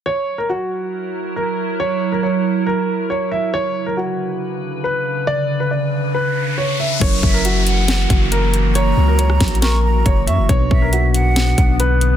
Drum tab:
CC |------------------------------------------------|------------------------------------------------|------------------------------------------------|------------------------------------------------|
HH |------------------------------------------------|------------------------------------------------|------------------------------------------------|------------------------------------------------|
SD |------------------------------------------------|------------------------------------------------|------------------------------------------------|------------------------------------------------|
BD |------------------------------------------------|------------------------------------------------|------------------------------------------------|------------------------------------------------|

CC |x-----------------------------------------------|------------------------------------------------|------------------------------------------------|
HH |x-----------x-----x-----x-----x-----x-----x-----|x-----------x-----x-x-x-x-----------x-----x-----|x-----------x-----x-----x-----x-----x-----x-----|
SD |------------------------o-----------------------|---------------r--o-----o-----------------------|------------------------o-----------------------|
BD |o-----o-----------------------o-----------------|------------------o-----------------o-----------|o-----o-----------------------o-----------------|